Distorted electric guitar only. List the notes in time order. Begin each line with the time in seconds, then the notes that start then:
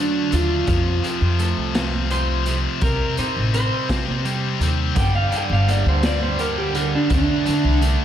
Already playing: D3 A3 D4
0.31 D3 A3 D4
0.67 F2 C3 F3
1.03 F2 C3 F3
1.75 F2 C3 F3
2.10 F2 C3 F3
2.46 F2 C3 F3
2.82 C3 G3 C4
3.18 C3 G3 C4
3.89 C3 G3 C4
4.25 C3 G3 C4
4.61 C3 G3 C4
4.96 G2 D3 G3
5.33 G2 D3 G3
6.04 G2 D3 G3
6.40 G2 D3 G3
6.75 G2 D3 G3
7.11 D3 A3 D4
7.46 D3 A3 D4